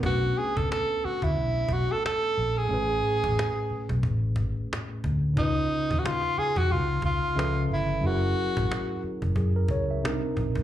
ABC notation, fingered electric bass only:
X:1
M:4/4
L:1/16
Q:"Swing 16ths" 1/4=90
K:Bdor
V:1 name="Fingered electric bass" clef=bass
B,,,2 z C,, z3 D,, B,,,2 B,,, z3 ^A,,,2 | A,,,2 z A,,, z3 B,,, A,,,2 G,,, z3 D,,2 | C,,2 z ^D,, z3 ^E,, C,,2 C,, z C,,2 =G,,,2 | F,,,2 z G,,, z3 F,,, F,,2 C,,2 =C,, z _B,,, C,, |]